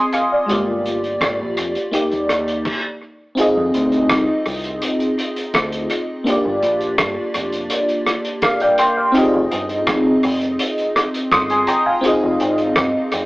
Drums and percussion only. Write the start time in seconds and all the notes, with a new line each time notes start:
0.13 closed hi-hat
0.49 closed hi-hat
0.86 closed hi-hat
1.04 closed hi-hat
1.21 kick, cross-stick, closed hi-hat
1.57 closed hi-hat
1.75 closed hi-hat
1.93 closed hi-hat
2.12 closed hi-hat
2.29 cross-stick, closed hi-hat
2.48 closed hi-hat
2.65 kick, crash
3.37 closed hi-hat
3.74 closed hi-hat
3.92 closed hi-hat
4.09 kick, cross-stick, closed hi-hat
4.46 open hi-hat
4.64 closed hi-hat
4.82 closed hi-hat
5.00 closed hi-hat
5.19 closed hi-hat
5.36 closed hi-hat
5.54 kick, cross-stick, closed hi-hat
5.72 closed hi-hat
5.90 closed hi-hat
6.27 closed hi-hat
6.63 closed hi-hat
6.81 closed hi-hat
6.98 kick, cross-stick, closed hi-hat
7.34 closed hi-hat
7.53 closed hi-hat
7.70 closed hi-hat
7.89 closed hi-hat
8.06 cross-stick, closed hi-hat
8.25 closed hi-hat
8.42 kick, cross-stick, closed hi-hat
8.60 closed hi-hat
8.78 closed hi-hat
9.15 closed hi-hat
9.52 closed hi-hat
9.69 closed hi-hat
9.87 kick, cross-stick, closed hi-hat
10.23 open hi-hat
10.41 closed hi-hat
10.59 closed hi-hat
10.78 closed hi-hat
10.96 cross-stick, closed hi-hat
11.14 closed hi-hat
11.31 kick, cross-stick, closed hi-hat
11.50 closed hi-hat
11.67 closed hi-hat
12.04 closed hi-hat
12.40 closed hi-hat
12.58 closed hi-hat
12.76 kick, cross-stick, closed hi-hat
13.12 closed hi-hat